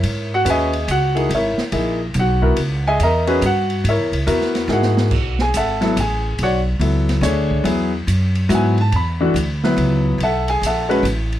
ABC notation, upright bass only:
X:1
M:3/4
L:1/8
Q:"Swing" 1/4=142
K:C#dor
V:1 name="Upright bass" clef=bass
G,,2 D,,2 C,,2 | G,,, z A,,,2 B,,,2 | C,,2 E,,2 =G,,2 | (3G,, E,, C,, E,,2 G,,2 |
[K:Bdor] B,,,2 G,,,2 A,,,2 | B,,,2 C,,2 D,,2 | E,,2 F,,2 G,,2 | E,,2 D,,2 C,,2 |
B,,,2 ^A,,,2 =A,,,2 |]